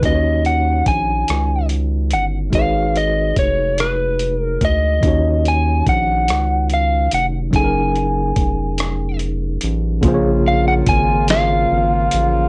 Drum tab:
HH |xxxxxx|xxxxxx|xxxxxx|xxxxxx|
SD |---r--|---r--|---r--|---r--|
BD |o-o---|o-o--o|o-o---|o-o---|

HH |x-xx-x|
SD |---o--|
BD |o-o---|